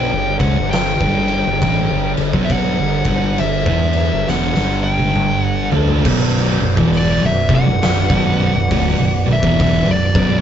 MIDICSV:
0, 0, Header, 1, 6, 480
1, 0, Start_track
1, 0, Key_signature, 2, "minor"
1, 0, Tempo, 886263
1, 1358, Time_signature, 4, 2, 24, 8
1, 5639, End_track
2, 0, Start_track
2, 0, Title_t, "Lead electric guitar"
2, 0, Program_c, 0, 29
2, 0, Note_on_c, 0, 79, 95
2, 196, Note_off_c, 0, 79, 0
2, 213, Note_on_c, 0, 78, 99
2, 381, Note_off_c, 0, 78, 0
2, 383, Note_on_c, 0, 79, 103
2, 1148, Note_off_c, 0, 79, 0
2, 1326, Note_on_c, 0, 76, 72
2, 1356, Note_off_c, 0, 76, 0
2, 1366, Note_on_c, 0, 78, 93
2, 1837, Note_off_c, 0, 78, 0
2, 1839, Note_on_c, 0, 76, 89
2, 2326, Note_off_c, 0, 76, 0
2, 2328, Note_on_c, 0, 78, 109
2, 2618, Note_off_c, 0, 78, 0
2, 2620, Note_on_c, 0, 79, 106
2, 2929, Note_off_c, 0, 79, 0
2, 2929, Note_on_c, 0, 78, 106
2, 3077, Note_off_c, 0, 78, 0
2, 3775, Note_on_c, 0, 74, 105
2, 3922, Note_off_c, 0, 74, 0
2, 3929, Note_on_c, 0, 76, 87
2, 4079, Note_off_c, 0, 76, 0
2, 4089, Note_on_c, 0, 78, 112
2, 5021, Note_off_c, 0, 78, 0
2, 5051, Note_on_c, 0, 76, 85
2, 5199, Note_off_c, 0, 76, 0
2, 5207, Note_on_c, 0, 76, 93
2, 5357, Note_off_c, 0, 76, 0
2, 5368, Note_on_c, 0, 74, 100
2, 5614, Note_off_c, 0, 74, 0
2, 5639, End_track
3, 0, Start_track
3, 0, Title_t, "Tonewheel organ"
3, 0, Program_c, 1, 16
3, 0, Note_on_c, 1, 50, 65
3, 0, Note_on_c, 1, 62, 60
3, 0, Note_on_c, 1, 69, 72
3, 3256, Note_off_c, 1, 50, 0
3, 3258, Note_off_c, 1, 62, 0
3, 3260, Note_off_c, 1, 69, 0
3, 3277, Note_on_c, 1, 66, 66
3, 3278, Note_on_c, 1, 59, 65
3, 3286, Note_on_c, 1, 74, 70
3, 5639, Note_off_c, 1, 59, 0
3, 5639, Note_off_c, 1, 66, 0
3, 5639, Note_off_c, 1, 74, 0
3, 5639, End_track
4, 0, Start_track
4, 0, Title_t, "Distorted electric guitar"
4, 0, Program_c, 2, 30
4, 0, Note_on_c, 2, 47, 93
4, 0, Note_on_c, 2, 54, 95
4, 0, Note_on_c, 2, 59, 96
4, 56, Note_off_c, 2, 47, 0
4, 58, Note_off_c, 2, 54, 0
4, 58, Note_off_c, 2, 59, 0
4, 65, Note_on_c, 2, 43, 65
4, 66, Note_on_c, 2, 50, 68
4, 214, Note_off_c, 2, 50, 0
4, 216, Note_on_c, 2, 49, 86
4, 217, Note_off_c, 2, 43, 0
4, 221, Note_on_c, 2, 56, 101
4, 302, Note_off_c, 2, 49, 0
4, 304, Note_off_c, 2, 56, 0
4, 309, Note_on_c, 2, 43, 66
4, 313, Note_on_c, 2, 50, 67
4, 489, Note_off_c, 2, 43, 0
4, 490, Note_off_c, 2, 50, 0
4, 545, Note_on_c, 2, 43, 93
4, 548, Note_on_c, 2, 50, 86
4, 549, Note_on_c, 2, 55, 97
4, 781, Note_off_c, 2, 43, 0
4, 782, Note_off_c, 2, 50, 0
4, 783, Note_off_c, 2, 55, 0
4, 788, Note_on_c, 2, 43, 66
4, 790, Note_on_c, 2, 50, 76
4, 875, Note_off_c, 2, 43, 0
4, 878, Note_on_c, 2, 45, 96
4, 879, Note_off_c, 2, 50, 0
4, 881, Note_on_c, 2, 52, 108
4, 1019, Note_off_c, 2, 45, 0
4, 1020, Note_off_c, 2, 52, 0
4, 1028, Note_on_c, 2, 43, 69
4, 1031, Note_on_c, 2, 50, 74
4, 1169, Note_off_c, 2, 43, 0
4, 1173, Note_off_c, 2, 50, 0
4, 1176, Note_on_c, 2, 43, 65
4, 1179, Note_on_c, 2, 50, 70
4, 1263, Note_off_c, 2, 50, 0
4, 1265, Note_on_c, 2, 47, 78
4, 1266, Note_on_c, 2, 54, 93
4, 1267, Note_off_c, 2, 43, 0
4, 1270, Note_on_c, 2, 59, 94
4, 1497, Note_off_c, 2, 47, 0
4, 1498, Note_off_c, 2, 54, 0
4, 1500, Note_off_c, 2, 59, 0
4, 1505, Note_on_c, 2, 43, 64
4, 1508, Note_on_c, 2, 50, 77
4, 1651, Note_off_c, 2, 43, 0
4, 1657, Note_off_c, 2, 50, 0
4, 1658, Note_on_c, 2, 43, 78
4, 1663, Note_on_c, 2, 50, 83
4, 1666, Note_on_c, 2, 55, 74
4, 1833, Note_off_c, 2, 43, 0
4, 1836, Note_off_c, 2, 50, 0
4, 1837, Note_off_c, 2, 55, 0
4, 1841, Note_on_c, 2, 43, 62
4, 1844, Note_on_c, 2, 50, 70
4, 1989, Note_off_c, 2, 43, 0
4, 1990, Note_on_c, 2, 52, 81
4, 1991, Note_off_c, 2, 50, 0
4, 1993, Note_on_c, 2, 59, 96
4, 1996, Note_on_c, 2, 64, 90
4, 2223, Note_off_c, 2, 52, 0
4, 2225, Note_off_c, 2, 59, 0
4, 2227, Note_off_c, 2, 64, 0
4, 2234, Note_on_c, 2, 43, 64
4, 2237, Note_on_c, 2, 50, 69
4, 2319, Note_off_c, 2, 43, 0
4, 2321, Note_on_c, 2, 40, 84
4, 2323, Note_off_c, 2, 50, 0
4, 2326, Note_on_c, 2, 47, 99
4, 2460, Note_off_c, 2, 40, 0
4, 2463, Note_off_c, 2, 47, 0
4, 2467, Note_on_c, 2, 43, 96
4, 2472, Note_on_c, 2, 50, 86
4, 2474, Note_on_c, 2, 55, 91
4, 3088, Note_off_c, 2, 43, 0
4, 3091, Note_off_c, 2, 50, 0
4, 3092, Note_off_c, 2, 55, 0
4, 3102, Note_on_c, 2, 50, 87
4, 3104, Note_on_c, 2, 57, 96
4, 3108, Note_on_c, 2, 62, 107
4, 3275, Note_off_c, 2, 50, 0
4, 3276, Note_off_c, 2, 57, 0
4, 3278, Note_off_c, 2, 62, 0
4, 3281, Note_on_c, 2, 35, 94
4, 3284, Note_on_c, 2, 42, 111
4, 3287, Note_on_c, 2, 47, 107
4, 3570, Note_off_c, 2, 35, 0
4, 3572, Note_off_c, 2, 42, 0
4, 3573, Note_off_c, 2, 47, 0
4, 3583, Note_on_c, 2, 35, 64
4, 3583, Note_on_c, 2, 42, 66
4, 3667, Note_off_c, 2, 35, 0
4, 3670, Note_off_c, 2, 42, 0
4, 3670, Note_on_c, 2, 40, 99
4, 3674, Note_on_c, 2, 47, 88
4, 3677, Note_on_c, 2, 52, 99
4, 3900, Note_off_c, 2, 40, 0
4, 3902, Note_off_c, 2, 47, 0
4, 3903, Note_off_c, 2, 52, 0
4, 3911, Note_on_c, 2, 35, 68
4, 3913, Note_on_c, 2, 42, 73
4, 4054, Note_off_c, 2, 35, 0
4, 4057, Note_on_c, 2, 41, 99
4, 4059, Note_off_c, 2, 42, 0
4, 4061, Note_on_c, 2, 48, 101
4, 4142, Note_off_c, 2, 41, 0
4, 4144, Note_off_c, 2, 48, 0
4, 4151, Note_on_c, 2, 35, 69
4, 4154, Note_on_c, 2, 42, 72
4, 4329, Note_off_c, 2, 35, 0
4, 4331, Note_off_c, 2, 42, 0
4, 4392, Note_on_c, 2, 35, 93
4, 4395, Note_on_c, 2, 42, 98
4, 4396, Note_on_c, 2, 47, 110
4, 4624, Note_off_c, 2, 35, 0
4, 4625, Note_off_c, 2, 42, 0
4, 4626, Note_off_c, 2, 47, 0
4, 4631, Note_on_c, 2, 35, 67
4, 4634, Note_on_c, 2, 42, 76
4, 4717, Note_off_c, 2, 35, 0
4, 4719, Note_on_c, 2, 38, 94
4, 4721, Note_off_c, 2, 42, 0
4, 4723, Note_on_c, 2, 45, 104
4, 4859, Note_off_c, 2, 38, 0
4, 4861, Note_off_c, 2, 45, 0
4, 4870, Note_on_c, 2, 35, 74
4, 4871, Note_on_c, 2, 42, 76
4, 5012, Note_off_c, 2, 35, 0
4, 5013, Note_off_c, 2, 42, 0
4, 5019, Note_on_c, 2, 35, 71
4, 5020, Note_on_c, 2, 42, 73
4, 5107, Note_off_c, 2, 35, 0
4, 5108, Note_off_c, 2, 42, 0
4, 5109, Note_on_c, 2, 40, 100
4, 5113, Note_on_c, 2, 47, 97
4, 5116, Note_on_c, 2, 52, 102
4, 5338, Note_off_c, 2, 40, 0
4, 5340, Note_off_c, 2, 47, 0
4, 5342, Note_off_c, 2, 52, 0
4, 5345, Note_on_c, 2, 35, 60
4, 5348, Note_on_c, 2, 42, 76
4, 5491, Note_off_c, 2, 35, 0
4, 5494, Note_off_c, 2, 42, 0
4, 5497, Note_on_c, 2, 35, 78
4, 5500, Note_on_c, 2, 42, 97
4, 5502, Note_on_c, 2, 47, 85
4, 5639, Note_off_c, 2, 35, 0
4, 5639, Note_off_c, 2, 42, 0
4, 5639, Note_off_c, 2, 47, 0
4, 5639, End_track
5, 0, Start_track
5, 0, Title_t, "Fingered electric bass"
5, 0, Program_c, 3, 33
5, 70, Note_on_c, 3, 31, 85
5, 208, Note_off_c, 3, 31, 0
5, 219, Note_on_c, 3, 37, 91
5, 302, Note_off_c, 3, 37, 0
5, 314, Note_on_c, 3, 31, 82
5, 535, Note_off_c, 3, 31, 0
5, 545, Note_on_c, 3, 31, 103
5, 770, Note_off_c, 3, 31, 0
5, 793, Note_on_c, 3, 31, 75
5, 875, Note_off_c, 3, 31, 0
5, 878, Note_on_c, 3, 33, 90
5, 1018, Note_off_c, 3, 33, 0
5, 1031, Note_on_c, 3, 31, 82
5, 1169, Note_off_c, 3, 31, 0
5, 1181, Note_on_c, 3, 31, 83
5, 1261, Note_off_c, 3, 31, 0
5, 1264, Note_on_c, 3, 35, 89
5, 1489, Note_off_c, 3, 35, 0
5, 1510, Note_on_c, 3, 31, 84
5, 1648, Note_off_c, 3, 31, 0
5, 1655, Note_on_c, 3, 31, 106
5, 1824, Note_off_c, 3, 31, 0
5, 1843, Note_on_c, 3, 31, 86
5, 1980, Note_off_c, 3, 31, 0
5, 1983, Note_on_c, 3, 40, 93
5, 2208, Note_off_c, 3, 40, 0
5, 2234, Note_on_c, 3, 31, 76
5, 2315, Note_off_c, 3, 31, 0
5, 2323, Note_on_c, 3, 28, 93
5, 2460, Note_off_c, 3, 28, 0
5, 2472, Note_on_c, 3, 31, 98
5, 3078, Note_off_c, 3, 31, 0
5, 3098, Note_on_c, 3, 38, 90
5, 3266, Note_off_c, 3, 38, 0
5, 3278, Note_on_c, 3, 23, 100
5, 3557, Note_off_c, 3, 23, 0
5, 3581, Note_on_c, 3, 23, 87
5, 3663, Note_off_c, 3, 23, 0
5, 3671, Note_on_c, 3, 28, 98
5, 3892, Note_off_c, 3, 28, 0
5, 3911, Note_on_c, 3, 23, 86
5, 4049, Note_off_c, 3, 23, 0
5, 4057, Note_on_c, 3, 29, 102
5, 4141, Note_off_c, 3, 29, 0
5, 4149, Note_on_c, 3, 23, 86
5, 4371, Note_off_c, 3, 23, 0
5, 4385, Note_on_c, 3, 23, 105
5, 4609, Note_off_c, 3, 23, 0
5, 4627, Note_on_c, 3, 23, 89
5, 4711, Note_off_c, 3, 23, 0
5, 4718, Note_on_c, 3, 26, 97
5, 4856, Note_off_c, 3, 26, 0
5, 4867, Note_on_c, 3, 23, 81
5, 5006, Note_off_c, 3, 23, 0
5, 5019, Note_on_c, 3, 23, 82
5, 5101, Note_off_c, 3, 23, 0
5, 5108, Note_on_c, 3, 28, 92
5, 5330, Note_off_c, 3, 28, 0
5, 5345, Note_on_c, 3, 23, 84
5, 5484, Note_off_c, 3, 23, 0
5, 5497, Note_on_c, 3, 23, 110
5, 5639, Note_off_c, 3, 23, 0
5, 5639, End_track
6, 0, Start_track
6, 0, Title_t, "Drums"
6, 216, Note_on_c, 9, 36, 106
6, 219, Note_on_c, 9, 49, 62
6, 271, Note_off_c, 9, 36, 0
6, 273, Note_off_c, 9, 49, 0
6, 394, Note_on_c, 9, 49, 78
6, 398, Note_on_c, 9, 38, 109
6, 448, Note_off_c, 9, 49, 0
6, 452, Note_off_c, 9, 38, 0
6, 545, Note_on_c, 9, 36, 100
6, 599, Note_off_c, 9, 36, 0
6, 693, Note_on_c, 9, 49, 57
6, 748, Note_off_c, 9, 49, 0
6, 876, Note_on_c, 9, 36, 109
6, 879, Note_on_c, 9, 49, 86
6, 931, Note_off_c, 9, 36, 0
6, 933, Note_off_c, 9, 49, 0
6, 1176, Note_on_c, 9, 49, 60
6, 1230, Note_off_c, 9, 49, 0
6, 1264, Note_on_c, 9, 36, 109
6, 1318, Note_off_c, 9, 36, 0
6, 1351, Note_on_c, 9, 49, 82
6, 1354, Note_on_c, 9, 36, 113
6, 1405, Note_off_c, 9, 49, 0
6, 1408, Note_off_c, 9, 36, 0
6, 1649, Note_on_c, 9, 49, 61
6, 1653, Note_on_c, 9, 36, 102
6, 1703, Note_off_c, 9, 49, 0
6, 1707, Note_off_c, 9, 36, 0
6, 1831, Note_on_c, 9, 49, 81
6, 1885, Note_off_c, 9, 49, 0
6, 1983, Note_on_c, 9, 36, 113
6, 2037, Note_off_c, 9, 36, 0
6, 2129, Note_on_c, 9, 49, 62
6, 2183, Note_off_c, 9, 49, 0
6, 2316, Note_on_c, 9, 38, 64
6, 2370, Note_off_c, 9, 38, 0
6, 2460, Note_on_c, 9, 38, 56
6, 2514, Note_off_c, 9, 38, 0
6, 2699, Note_on_c, 9, 48, 74
6, 2754, Note_off_c, 9, 48, 0
6, 2792, Note_on_c, 9, 47, 87
6, 2846, Note_off_c, 9, 47, 0
6, 3097, Note_on_c, 9, 43, 90
6, 3151, Note_off_c, 9, 43, 0
6, 3183, Note_on_c, 9, 43, 86
6, 3237, Note_off_c, 9, 43, 0
6, 3276, Note_on_c, 9, 57, 127
6, 3277, Note_on_c, 9, 36, 120
6, 3330, Note_off_c, 9, 57, 0
6, 3332, Note_off_c, 9, 36, 0
6, 3668, Note_on_c, 9, 36, 111
6, 3722, Note_off_c, 9, 36, 0
6, 3756, Note_on_c, 9, 46, 66
6, 3811, Note_off_c, 9, 46, 0
6, 4056, Note_on_c, 9, 36, 112
6, 4111, Note_off_c, 9, 36, 0
6, 4237, Note_on_c, 9, 46, 74
6, 4241, Note_on_c, 9, 38, 119
6, 4291, Note_off_c, 9, 46, 0
6, 4295, Note_off_c, 9, 38, 0
6, 4387, Note_on_c, 9, 36, 112
6, 4441, Note_off_c, 9, 36, 0
6, 4717, Note_on_c, 9, 36, 110
6, 4718, Note_on_c, 9, 46, 73
6, 4771, Note_off_c, 9, 36, 0
6, 4772, Note_off_c, 9, 46, 0
6, 5107, Note_on_c, 9, 36, 106
6, 5161, Note_off_c, 9, 36, 0
6, 5199, Note_on_c, 9, 36, 117
6, 5204, Note_on_c, 9, 46, 76
6, 5253, Note_off_c, 9, 36, 0
6, 5258, Note_off_c, 9, 46, 0
6, 5498, Note_on_c, 9, 36, 111
6, 5552, Note_off_c, 9, 36, 0
6, 5639, End_track
0, 0, End_of_file